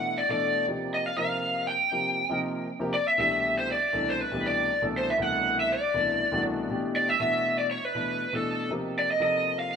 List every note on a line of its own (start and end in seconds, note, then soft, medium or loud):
0.00 0.18 B2 medium
0.00 0.19 E3 medium
0.00 0.19 A3 medium
0.00 0.19 D4 medium
0.00 0.19 E4 medium
0.00 0.18 F#5 medium
0.18 0.30 D5 medium
0.29 0.65 B2 medium
0.29 0.65 E3 medium
0.29 0.66 A3 medium
0.29 0.66 D4 medium
0.29 0.66 A4 medium
0.29 0.65 D5 medium
0.67 1.07 C3 medium
0.67 1.08 F3 medium
0.67 1.08 A#3 medium
0.67 1.08 D#4 medium
0.67 1.08 G4 medium
0.94 1.06 D#5 medium
1.06 1.17 F5 medium
1.17 1.72 C3 medium
1.17 1.72 F3 medium
1.17 1.72 A#3 medium
1.17 1.72 D#4 medium
1.17 1.73 A#4 medium
1.17 1.69 F5 medium
1.67 2.39 G5 medium
1.92 2.19 C3 medium
1.92 2.20 F3 medium
1.92 2.20 A#3 medium
1.92 2.20 D#4 medium
1.92 2.20 G4 medium
2.29 2.66 C3 medium
2.29 2.66 F3 medium
2.29 2.66 A#3 medium
2.29 2.67 D#4 medium
2.29 2.67 A#4 medium
2.79 2.92 C3 medium
2.79 2.92 F3 medium
2.79 2.92 A#3 medium
2.79 2.93 D#4 medium
2.79 2.93 G4 loud
2.94 3.07 D5 medium
3.08 3.19 E5 medium
3.17 3.72 C2 medium
3.17 3.73 B2 medium
3.17 3.73 E3 medium
3.17 3.73 A3 medium
3.17 3.73 D4 medium
3.17 3.73 G4 medium
3.17 3.55 E5 medium
3.59 3.69 C5 medium
3.72 4.09 D5 medium
3.92 4.20 C2 medium
3.92 4.20 B2 medium
3.92 4.20 E3 medium
3.92 4.21 A3 medium
3.92 4.21 D4 medium
3.92 4.21 A4 medium
4.09 4.21 C5 medium
4.21 4.45 B4 medium
4.31 4.67 C2 medium
4.31 4.67 B2 medium
4.31 4.67 E3 medium
4.31 4.67 A3 medium
4.31 4.68 D4 medium
4.31 4.68 G4 medium
4.47 4.81 D5 medium
4.81 5.09 C2 medium
4.81 5.09 B2 medium
4.81 5.09 E3 medium
4.81 5.09 A3 medium
4.81 5.09 D4 medium
4.81 5.10 A4 medium
4.97 5.09 C5 medium
5.10 5.15 E5 medium
5.18 5.73 C2 medium
5.18 5.73 B2 medium
5.18 5.73 E3 medium
5.18 5.74 A3 medium
5.18 5.74 D4 medium
5.18 5.74 E4 medium
5.22 5.59 F#5 loud
5.60 5.71 E5 medium
5.72 6.42 D5 medium
5.94 6.21 C2 medium
5.94 6.21 B2 medium
5.94 6.22 E3 medium
5.94 6.22 A3 medium
5.94 6.22 D4 medium
5.94 6.22 E4 medium
6.31 6.68 C2 medium
6.31 6.68 B2 medium
6.31 6.68 E3 medium
6.31 6.68 A3 medium
6.31 6.68 D4 medium
6.31 6.69 F#4 medium
6.69 7.10 B2 medium
6.69 7.10 E3 medium
6.69 7.11 A3 medium
6.69 7.11 D4 medium
6.69 7.11 G4 medium
6.96 7.09 D5 loud
7.09 7.20 E5 medium
7.19 7.75 B2 medium
7.19 7.75 E3 medium
7.19 7.75 A3 medium
7.19 7.75 D4 medium
7.19 7.76 F#4 medium
7.19 7.56 E5 loud
7.59 7.64 D5 medium
7.71 7.85 C#5 medium
7.85 8.35 B4 medium
7.95 8.22 B2 medium
7.95 8.23 E3 medium
7.95 8.23 A3 medium
7.95 8.23 D4 medium
7.95 8.23 E4 medium
8.33 8.69 B2 medium
8.33 8.69 E3 medium
8.33 8.69 A3 medium
8.33 8.70 D4 medium
8.33 8.70 A4 medium
8.33 8.69 A4 medium
8.70 9.11 C3 medium
8.70 9.11 F3 medium
8.70 9.11 A#3 medium
8.70 9.11 D#4 medium
8.70 9.12 G4 medium
8.99 9.10 D5 medium
9.11 9.21 D#5 medium
9.20 9.75 C3 medium
9.20 9.75 F3 medium
9.20 9.75 A#3 medium
9.20 9.76 D#4 medium
9.20 9.76 A4 medium
9.20 9.57 D#5 medium
9.59 9.71 F5 medium
9.71 9.76 G5 medium